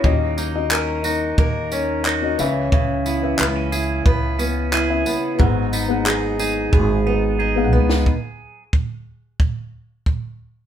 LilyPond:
<<
  \new Staff \with { instrumentName = "Felt piano" } { \time 4/4 \key gis \minor \tempo 4 = 90 <cis' fis' dis''>8. <cis' fis' dis''>2 r8 <cis' fis' dis''>16 <cis' b' e''>8~ | <cis' b' e''>8. <cis' b' e''>2 r8 <cis' b' e''>8. | <b gis' fis''>8. <b gis' fis''>2 r8 <b gis' eis'' fis''>8. | r1 | }
  \new Staff \with { instrumentName = "Steel-string acoustic guitar" } { \time 4/4 \key gis \minor dis8 dis'8 ais'8 dis'8 ais'8 cis'8 dis'8 cis8 | cis8 e'8 b'8 e'8 b'8 b8 e'8 b8 | gis,8 dis'8 gis'8 dis'8 gis'8 b8 dis'8 b8 | r1 | }
  \new Staff \with { instrumentName = "Clean electric guitar" } { \time 4/4 \key gis \minor ais8 ais8 cis'8 fis'8 ais8 cis'8 fis'8 e8 | e8 b8 b16 cis'16 gis'8 b8 cis'8 gis'8 b8 | fis8 b8 dis'8 gis'8 b8 dis'8 gis'8 b8 | r1 | }
  \new Staff \with { instrumentName = "Upright bass" } { \clef bass \time 4/4 \key gis \minor dis,2 dis,4. cis,8~ | cis,4 cis,4 cis,4. r8 | gis,,2 gis,,4. cis,8 | r1 | }
  \new DrumStaff \with { instrumentName = "Drums" } \drummode { \time 4/4 bd8 tamb8 hc8 tamb8 bd8 tamb8 hc8 tamb8 | bd8 tamb8 hc8 tamb8 bd8 tamb8 hc8 tamb8 | bd8 tamb8 hc8 tamb8 bd4 r8. sn16 | bd4 bd4 bd4 bd4 | }
>>